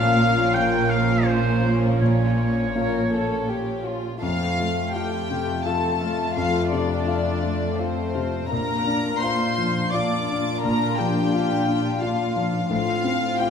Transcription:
Already playing: double bass section A#1, grand piano A#2, harp A#2 A#3 F4 F5, cello section A#2, viola section F3 C#4, violin section F4 A#4 F5, oboe F5
0.54 grand piano A#3 F4 F5, oboe G5, violin section G5
0.89 oboe F5, violin section F5
1.25 oboe C5, violin section C5
2.01 grand piano A#2, oboe C#5, violin section C#5
2.75 grand piano A#3 F4 F5, violin section A#4
3.13 violin section A4
3.48 violin section G4
3.85 violin section F4
4.21 cello section F2, harp F2, grand piano F2, violin section A3 F4 F5, viola section F4
4.57 harp A3, grand piano A3
4.93 grand piano F4 F5, viola section G4, harp F5, violin section G5
5.29 grand piano C3, harp F4
5.65 harp A3, grand piano F4 F5, viola section A4, violin section A5
6.01 grand piano A3, harp F5
6.35 harp F2, grand piano F2, viola section F4, violin section F5
6.71 grand piano C3, harp A3, viola section D4, violin section D5
7.07 grand piano F4 F5, harp F5
7.43 grand piano A3, harp F4
7.77 harp A3, viola section C4, grand piano F4 F5, violin section C5
8.15 grand piano C3, harp F5
8.50 cello section A#2, harp A#2, grand piano A#2, violin section D4 F4 A#5, viola section A#4
8.87 grand piano D4, harp D4
9.20 grand piano F4 F5, viola section C5, harp F5, violin section C6
9.58 grand piano F3, harp F4
9.91 harp D4, grand piano F4 F5, viola section D5, violin section D6
10.28 grand piano D4, harp F5
10.62 harp A#2, grand piano A#2, viola section A#4, violin section A#5
10.98 grand piano F3, harp D4, viola section G4, violin section G5
11.33 grand piano F4 F5, harp F5
11.68 grand piano D4, harp F4
12.01 harp D4, viola section F4, grand piano F4 F5, violin section F5
12.36 grand piano F3, harp F5
12.70 cello section A2, grand piano A2, harp A2, violin section C4 F4 F5, viola section F4
13.04 grand piano C4, harp C4
13.39 grand piano F4 F5, viola section G4, harp F5, violin section G5

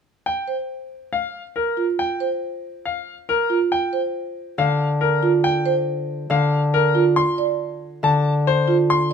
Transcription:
0.26 grand piano G5
0.48 marimba C5
1.13 grand piano F5
1.56 grand piano A#4
1.77 marimba F4
1.99 grand piano G5
2.20 marimba C5
2.85 grand piano F5
3.29 grand piano A#4
3.50 marimba F4
3.72 grand piano G5
3.93 marimba C5
4.58 harp D3, grand piano F5
5.01 grand piano A#4
5.23 marimba F4
5.44 grand piano G5
5.66 marimba C5
6.30 harp D3, grand piano F5
6.74 grand piano A#4
6.95 marimba F4
7.16 grand piano C6
7.38 marimba D5
8.03 harp D3, grand piano A5
8.47 grand piano C5
8.68 marimba F4
8.90 grand piano C6

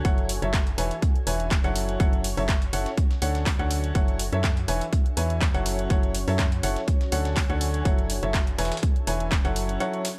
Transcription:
0.05 fm bass F#1, upright piano F#3 E4 A4 C#5 F#5, ambient pad F#4, kick, closed hi-hat
0.18 closed hi-hat
0.29 closed hi-hat, open hi-hat
0.38 fm bass F#1, upright piano F#3 E4 A4 C#5 E5, ambient pad C#5, closed hi-hat
0.54 kick, snare, clap, closed hi-hat
0.67 closed hi-hat
0.78 fm bass E1, upright piano E3 E4 B4 C#5 G#5, ambient pad C#4, closed hi-hat, open hi-hat
0.91 closed hi-hat
1.02 kick, closed hi-hat
1.16 closed hi-hat
1.27 fm bass E1, upright piano E3 E4 B4 C#5 G#5, closed hi-hat, open hi-hat
1.40 closed hi-hat
1.51 kick, snare, clap, closed hi-hat
1.64 fm bass F#1, upright piano F#3 E4 A4 C#5 F#5, closed hi-hat
1.75 ambient pad F#4, closed hi-hat, open hi-hat
1.89 closed hi-hat
2.00 fm bass F#1, upright piano F#3 E4 A4 C#5 F#5, kick, closed hi-hat
2.13 closed hi-hat
2.24 closed hi-hat, open hi-hat
2.31 ambient pad G#5
2.37 fm bass F#1, upright piano F#3 E4 A4 C#5 E5, open hi-hat
2.49 kick, snare, clap, closed hi-hat
2.62 closed hi-hat
2.73 fm bass F#1, upright piano E4 A4 C#5 F#5, closed hi-hat, open hi-hat
2.86 snare, closed hi-hat
2.97 kick, closed hi-hat
3.11 snare, closed hi-hat
3.22 fm bass D2, upright piano D3 D4 A4 C#5 F#5, closed hi-hat, open hi-hat
3.35 snare, closed hi-hat
3.46 kick, snare, clap, closed hi-hat, open hi-hat
3.59 fm bass D2, upright piano D3 D4 A4 C#5 F#5, closed hi-hat
3.71 closed hi-hat, open hi-hat
3.84 closed hi-hat
3.95 fm bass F#1, upright piano F#3 E4 A4 C#5 F#5, ambient pad F#4, kick, closed hi-hat
4.08 ambient pad C#5, closed hi-hat
4.19 closed hi-hat, open hi-hat
4.33 fm bass F#2, upright piano F#3 E4 A4 C#5 E5, closed hi-hat
4.44 kick, snare, clap, closed hi-hat
4.57 closed hi-hat
4.68 fm bass E1, upright piano E3 E4 B4 C#5 G#5, ambient pad C#4, closed hi-hat, open hi-hat
4.81 closed hi-hat
4.93 kick, closed hi-hat
5.06 closed hi-hat
5.17 fm bass E2, upright piano E3 E4 B4 C#5 G#5, closed hi-hat, open hi-hat
5.30 closed hi-hat
5.41 kick, snare, clap, closed hi-hat
5.54 fm bass F#1, upright piano F#3 E4 A4 C#5 F#5, closed hi-hat
5.66 ambient pad F#4, closed hi-hat, open hi-hat
5.79 closed hi-hat
5.90 fm bass F#1, upright piano F#3 E4 A4 C#5 F#5, kick, closed hi-hat
5.94 ambient pad G#5
6.03 closed hi-hat
6.14 closed hi-hat, open hi-hat
6.28 fm bass F#2, upright piano F#3 E4 A4 C#5 E5, open hi-hat
6.39 kick, snare, clap, closed hi-hat
6.52 closed hi-hat
6.63 fm bass F#1, upright piano E4 A4 C#5 F#5, closed hi-hat, open hi-hat
6.76 snare, closed hi-hat
6.88 kick, closed hi-hat
7.01 ambient pad A4, snare, closed hi-hat
7.12 fm bass D2, upright piano D3 D4 A4 C#5 F#5, closed hi-hat, open hi-hat
7.25 snare, closed hi-hat
7.36 kick, snare, clap, closed hi-hat, open hi-hat
7.50 fm bass D2, upright piano D3 D4 A4 C#5 F#5, closed hi-hat
7.61 closed hi-hat, open hi-hat
7.74 closed hi-hat
7.85 fm bass F#1, upright piano F#3 E4 A4 C#5 F#5, ambient pad F#4, kick, closed hi-hat
7.98 closed hi-hat
8.10 closed hi-hat, open hi-hat
8.19 fm bass F#1, upright piano F#3 E4 A4 C#5 E5, ambient pad C#5, closed hi-hat
8.34 kick, snare, clap, closed hi-hat
8.47 closed hi-hat
8.58 fm bass E1, upright piano E3 E4 B4 C#5 G#5, ambient pad C#4, snare, closed hi-hat, open hi-hat
8.65 snare, closed hi-hat
8.72 snare, closed hi-hat
8.77 snare, closed hi-hat
8.83 kick, closed hi-hat
8.96 closed hi-hat
9.07 fm bass E1, upright piano E3 E4 B4 C#5 G#5, closed hi-hat, open hi-hat
9.20 closed hi-hat
9.32 kick, snare, clap, closed hi-hat
9.45 fm bass F#1, upright piano F#3 E4 A4 C#5 F#5, closed hi-hat
9.56 ambient pad F#4, closed hi-hat, open hi-hat
9.69 closed hi-hat
9.80 upright piano F#3 E4 A4 C#5 F#5, closed hi-hat
9.93 closed hi-hat
10.05 snare, closed hi-hat, open hi-hat
10.11 ambient pad G#5

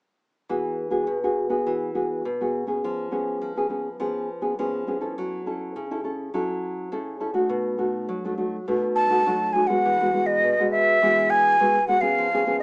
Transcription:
0.49 nylon-string guitar E3 B3 F#4 G#4
0.90 nylon-string guitar B3 F#4 G#4
1.07 nylon-string guitar B2
1.23 nylon-string guitar B3 F#4 G#4
1.49 nylon-string guitar B3 F#4 G#4
1.67 nylon-string guitar E3
1.95 nylon-string guitar B3 F#4 G#4
2.25 nylon-string guitar B2
2.41 nylon-string guitar B3 F#4 G#4
2.67 nylon-string guitar B3 C#4 G#4
2.84 nylon-string guitar F3
3.11 nylon-string guitar B3 C#4 G#4
3.42 nylon-string guitar F3
3.56 nylon-string guitar B3 C#4 G#4
3.69 nylon-string guitar B3 C#4 G#4
4.00 nylon-string guitar F3 B3 C#4 G#4
4.41 nylon-string guitar B3 C#4 G#4
4.59 nylon-string guitar F3 B3 C#4 G#4
4.87 nylon-string guitar B3 C#4 G#4
5.01 nylon-string guitar C#4 E4 A4
5.18 nylon-string guitar F#3
5.46 nylon-string guitar C#4 E4 A4
5.76 nylon-string guitar C#3
5.91 nylon-string guitar C#4 E4 A4
6.04 nylon-string guitar C#4 E4 A4
6.34 nylon-string guitar F#3 C#4 E4 A4
6.92 nylon-string guitar C#3 C#4 E4 A4
7.20 nylon-string guitar C#4 E4 A4
7.34 nylon-string guitar A3 D#4 F#4
7.49 nylon-string guitar B2
7.78 nylon-string guitar A3 D#4 F#4
8.09 nylon-string guitar F#3
8.25 nylon-string guitar A3 D#4 F#4
8.37 nylon-string guitar A3 D#4 F#4
8.68 nylon-string guitar B2 A3 D#4 F#4
8.96 flute A5
9.10 nylon-string guitar A3 D#4 F#4
9.26 nylon-string guitar F#3 A3 D#4 F#4
9.53 nylon-string guitar A3 D#4 F#4, flute G#5
9.67 nylon-string guitar G#3 B3 F#4, flute F#5
9.85 nylon-string guitar E3
10.01 nylon-string guitar G#3 B3 F#4
10.13 nylon-string guitar G#3 B3 F#4
10.26 flute D#5
10.44 nylon-string guitar B2
10.59 nylon-string guitar G#3 B3 F#4
10.71 flute E5
11.02 nylon-string guitar E3 G#3 B3 F#4
11.30 flute G#5
11.60 nylon-string guitar B2 G#3 B3 F#4
11.88 nylon-string guitar G#3 B3 F#4, flute F#5
12.01 nylon-string guitar B3 C#4 G#4, flute F5
12.18 nylon-string guitar F3
12.34 nylon-string guitar B3 C#4 G#4
12.47 nylon-string guitar B3 C#4 G#4

